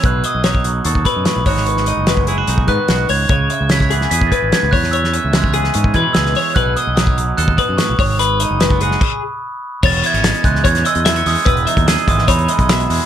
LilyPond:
<<
  \new Staff \with { instrumentName = "Glockenspiel" } { \time 4/4 \key e \major \tempo 4 = 147 fis'''8 dis'''8 dis'''4 cis'''8 b''8 cis'''4 | cis'''4 r4. fis'''4 gis'''8~ | gis'''8 r8 b'''4 b'''16. a'''32 gis'''8 gis'''8 fis'''8 | e'''2 r8 gis'''8 e'''4 |
fis'''8 dis'''8 dis'''4 fis'''8 dis'''8 cis'''4 | b''4 r2. | a'''8 gis'''4 fis'''8 gis'''8 e'''4 dis'''8 | e'''4 r8 dis'''8 b''4. r8 | }
  \new Staff \with { instrumentName = "Clean electric guitar" } { \time 4/4 \key e \major b'8 dis''8 cis''8 r4 b'4 cis''8 | b'8 dis''8 b'8 gis'4 b'4 cis''8 | cis''8 e''8 cis''8 gis'4 b'4 cis''8 | cis''8 e''8 cis''8 gis'4 b'4 cis''8 |
b'8 dis''8 cis''8 r4 b'4 cis''8 | b'8 dis''8 b'8 gis'4 r4. | cis''8 e''8 dis''4 cis''8 dis''8 e''4 | b'8 e''8 dis''4 cis''8 dis''8 e''4 | }
  \new Staff \with { instrumentName = "Clean electric guitar" } { \clef bass \time 4/4 \key e \major << { gis4 dis'4 a'4. <gis b dis' fis'>8~ | <gis b dis' fis'>8 dis'8 b8 e'16 fis'16 dis'8 b8 fis'8 r8 | r4 e'8 b8 gis'8 e'8 b8 r8 | r8 cis'8 gis8 gis'8 cis'8 gis8 gis'8 r8 |
r4 dis'4 a'4. r8 | r8 dis'8 gis16 b16 fis'8 r2 | r8 b16 cis'8. gis8 cis'8 gis8 b16 cis'16 gis8~ | gis8 dis'8 gis'8 gis8 dis'8 gis4 gis8 | } \\ { <b, e>4. fis4 b,8 a,8 gis,8~ | gis,4 gis4. dis4 gis,8 | cis4. e4. gis,8 e,8~ | e,4 e4. b,4 e,8 |
b,4. fis4 b,8 a,8 gis,8~ | gis,4 gis4 r2 | e,4. e4. e,4 | e,4. e4. b,4 | } >> }
  \new Staff \with { instrumentName = "Fingered electric bass" } { \clef bass \time 4/4 \key e \major b,,8 r16 b,,4~ b,,16 dis,8 r16 fis,16 r16 b,,16 gis,,8~ | gis,,8. fis,,4~ fis,,16 b,,8 gis,16 r16 b,,8 cis,8 | cis,8 r16 cis,4~ cis,16 e,8 r16 gis,,16 r16 cis,16 e,8~ | e,8. cis,4~ cis,16 gis,8 e16 r16 cis,8 r8 |
b,,8 r16 b,,4~ b,,16 dis,8 r16 fis,16 r16 b,,16 gis,,8~ | gis,,8. fis,,4~ fis,,16 r2 | e,,8 r16 gis,,8 r16 cis,8 e,8 r16 e,8. e,16 r16 | e,,8 r16 dis,8 r16 gis,,8 e,8 r16 b,,8. e,16 r16 | }
  \new DrumStaff \with { instrumentName = "Drums" } \drummode { \time 4/4 <hh bd>8 hh8 <hh sn>16 bd16 hh8 hh16 bd16 <hh bd>8 <hh sn>8 <hho bd>16 sn16 | hh16 sn16 hh8 <hh sn>16 bd16 hh8 hh16 bd16 <hh bd>8 <hh sn>8 hho8 | <hh bd>8 hh8 <hh sn>16 <bd sn>16 hh16 sn16 hh16 bd16 <hh bd>8 <hh sn>8 <hho bd>16 sn16 | hh16 sn16 hh8 <hh sn>16 bd16 hh16 sn16 hh16 bd16 <hh bd>8 <hh sn>16 sn16 hho8 |
<hh bd>8 hh8 <hh sn>16 bd16 hh8 hh16 bd16 <hh bd>8 <hh sn>8 <hho bd>8 | hh8 hh8 <hh sn>16 bd16 hh16 sn16 <cymc bd>4 r4 | <cymc bd>16 hh16 hh16 hh16 <hh sn>16 hh16 <hh bd>16 sn16 <hh bd>16 <hh sn>16 hh16 hh16 <hh sn>16 hh16 <hho sn>8 | <hh bd>16 hh16 hh16 <hh bd>16 <hh sn>16 hh16 <hh bd>16 sn16 <hh bd>16 hh16 hh16 <hh bd>16 <hh sn>16 hh16 hho8 | }
>>